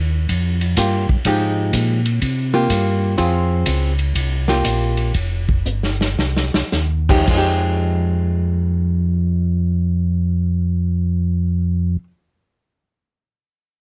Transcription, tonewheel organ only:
0, 0, Header, 1, 2, 480
1, 0, Start_track
1, 0, Key_signature, -4, "minor"
1, 0, Tempo, 482315
1, 1244, Time_signature, 4, 2, 24, 8
1, 4128, Tempo, 508044
1, 6048, Tempo, 548446
1, 7008, Tempo, 566038
1, 12544, End_track
2, 0, Start_track
2, 0, Title_t, "Tonewheel organ"
2, 0, Program_c, 0, 16
2, 0, Note_on_c, 0, 39, 87
2, 272, Note_off_c, 0, 39, 0
2, 291, Note_on_c, 0, 41, 66
2, 753, Note_off_c, 0, 41, 0
2, 768, Note_on_c, 0, 43, 76
2, 1064, Note_off_c, 0, 43, 0
2, 1089, Note_on_c, 0, 43, 39
2, 1167, Note_off_c, 0, 43, 0
2, 1247, Note_on_c, 0, 44, 69
2, 1710, Note_off_c, 0, 44, 0
2, 1723, Note_on_c, 0, 46, 82
2, 2188, Note_off_c, 0, 46, 0
2, 2208, Note_on_c, 0, 48, 75
2, 2670, Note_off_c, 0, 48, 0
2, 2689, Note_on_c, 0, 43, 87
2, 3151, Note_off_c, 0, 43, 0
2, 3167, Note_on_c, 0, 41, 71
2, 3631, Note_off_c, 0, 41, 0
2, 3645, Note_on_c, 0, 37, 85
2, 4114, Note_off_c, 0, 37, 0
2, 4135, Note_on_c, 0, 36, 72
2, 4583, Note_off_c, 0, 36, 0
2, 4596, Note_on_c, 0, 34, 77
2, 5055, Note_off_c, 0, 34, 0
2, 5071, Note_on_c, 0, 29, 69
2, 5539, Note_off_c, 0, 29, 0
2, 5551, Note_on_c, 0, 31, 76
2, 6033, Note_off_c, 0, 31, 0
2, 6050, Note_on_c, 0, 36, 73
2, 6341, Note_off_c, 0, 36, 0
2, 6363, Note_on_c, 0, 36, 33
2, 6442, Note_off_c, 0, 36, 0
2, 6525, Note_on_c, 0, 39, 83
2, 6996, Note_off_c, 0, 39, 0
2, 7009, Note_on_c, 0, 41, 74
2, 10986, Note_off_c, 0, 41, 0
2, 12544, End_track
0, 0, End_of_file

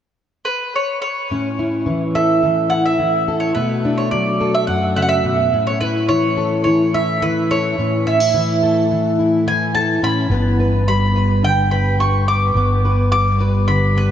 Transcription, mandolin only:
0, 0, Header, 1, 2, 480
1, 0, Start_track
1, 0, Key_signature, 3, "major"
1, 0, Tempo, 562852
1, 1107, Time_signature, 4, 2, 24, 8
1, 12036, End_track
2, 0, Start_track
2, 0, Title_t, "Mandolin"
2, 0, Program_c, 0, 25
2, 384, Note_on_c, 0, 71, 53
2, 632, Note_off_c, 0, 71, 0
2, 645, Note_on_c, 0, 73, 52
2, 857, Note_off_c, 0, 73, 0
2, 867, Note_on_c, 0, 73, 55
2, 1831, Note_off_c, 0, 73, 0
2, 1834, Note_on_c, 0, 76, 53
2, 2300, Note_on_c, 0, 78, 55
2, 2325, Note_off_c, 0, 76, 0
2, 2428, Note_off_c, 0, 78, 0
2, 2435, Note_on_c, 0, 76, 55
2, 2896, Note_off_c, 0, 76, 0
2, 2899, Note_on_c, 0, 73, 52
2, 3021, Note_off_c, 0, 73, 0
2, 3024, Note_on_c, 0, 71, 48
2, 3361, Note_off_c, 0, 71, 0
2, 3390, Note_on_c, 0, 73, 51
2, 3501, Note_off_c, 0, 73, 0
2, 3507, Note_on_c, 0, 74, 56
2, 3877, Note_on_c, 0, 76, 60
2, 3879, Note_off_c, 0, 74, 0
2, 3980, Note_off_c, 0, 76, 0
2, 3984, Note_on_c, 0, 78, 55
2, 4223, Note_off_c, 0, 78, 0
2, 4233, Note_on_c, 0, 78, 60
2, 4240, Note_on_c, 0, 76, 51
2, 4262, Note_off_c, 0, 78, 0
2, 4280, Note_off_c, 0, 76, 0
2, 4284, Note_on_c, 0, 78, 57
2, 4338, Note_on_c, 0, 76, 66
2, 4348, Note_off_c, 0, 78, 0
2, 4830, Note_off_c, 0, 76, 0
2, 4833, Note_on_c, 0, 73, 59
2, 4947, Note_off_c, 0, 73, 0
2, 4951, Note_on_c, 0, 71, 59
2, 5186, Note_off_c, 0, 71, 0
2, 5190, Note_on_c, 0, 73, 67
2, 5636, Note_off_c, 0, 73, 0
2, 5662, Note_on_c, 0, 73, 52
2, 5912, Note_off_c, 0, 73, 0
2, 5922, Note_on_c, 0, 76, 59
2, 6160, Note_on_c, 0, 71, 62
2, 6162, Note_off_c, 0, 76, 0
2, 6400, Note_off_c, 0, 71, 0
2, 6403, Note_on_c, 0, 73, 64
2, 6877, Note_off_c, 0, 73, 0
2, 6881, Note_on_c, 0, 76, 58
2, 8082, Note_on_c, 0, 80, 64
2, 8110, Note_off_c, 0, 76, 0
2, 8298, Note_off_c, 0, 80, 0
2, 8312, Note_on_c, 0, 81, 62
2, 8556, Note_off_c, 0, 81, 0
2, 8561, Note_on_c, 0, 83, 64
2, 9268, Note_off_c, 0, 83, 0
2, 9278, Note_on_c, 0, 83, 65
2, 9719, Note_off_c, 0, 83, 0
2, 9760, Note_on_c, 0, 79, 66
2, 9985, Note_off_c, 0, 79, 0
2, 9989, Note_on_c, 0, 83, 65
2, 10232, Note_off_c, 0, 83, 0
2, 10235, Note_on_c, 0, 85, 67
2, 10470, Note_off_c, 0, 85, 0
2, 10473, Note_on_c, 0, 86, 72
2, 11177, Note_off_c, 0, 86, 0
2, 11187, Note_on_c, 0, 86, 76
2, 11632, Note_off_c, 0, 86, 0
2, 11664, Note_on_c, 0, 83, 68
2, 11911, Note_off_c, 0, 83, 0
2, 11918, Note_on_c, 0, 71, 55
2, 12036, Note_off_c, 0, 71, 0
2, 12036, End_track
0, 0, End_of_file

